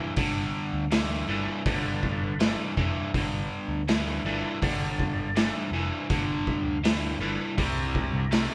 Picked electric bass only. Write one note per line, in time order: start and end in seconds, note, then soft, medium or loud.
0.17 0.50 G1 medium
0.73 1.22 D2 medium
1.29 1.45 G1 medium
1.66 2.15 G1 medium
2.21 2.54 G1 medium
2.77 2.93 F1 medium
3.14 3.47 G1 loud
3.68 4.18 D2 medium
4.24 4.41 G1 medium
4.62 5.11 G1 medium
5.16 5.49 G1 medium
5.72 5.89 F1 medium
6.10 6.43 G1 loud
6.64 7.13 D2 medium
7.19 7.36 G1 medium
7.58 8.06 C2 medium
8.13 8.46 C2 medium